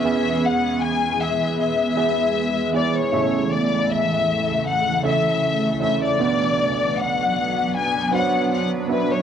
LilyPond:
<<
  \new Staff \with { instrumentName = "Violin section" } { \time 4/4 \key a \major \tempo 4 = 78 e''8 fis''8 gis''8 e''8 e''4. d''16 cis''16~ | cis''8 d''8 e''4 fis''8 e''4 e''16 d''16~ | d''4 fis''4 gis''8 fis''8 fis''8 b'16 cis''16 | }
  \new Staff \with { instrumentName = "Upright piano" } { \time 4/4 \key a \major <b e' gis' e''>2 r8 <b e' gis' e''>4 <b e' gis' e''>8 | <cis e' a' e''>2 r8 <cis' e' a' e''>4 <cis' e' a' e''>8 | <b d' fis' d''>2 r8 <b d' fis' c'' cis''>4 <b d' fis' e''>8 | }
  \new Staff \with { instrumentName = "Upright piano" } { \clef bass \time 4/4 \key a \major <e, e>1 | <a,, a,>1 | <b,, b,>1 | }
  \new Staff \with { instrumentName = "Ambient pad" } { \time 4/4 \key a \major << { <gis b gis'>1 | <cis a a'>1 | <b d' b'>1 | } \\ { e1~ | e1 | fis1 | } >> }
>>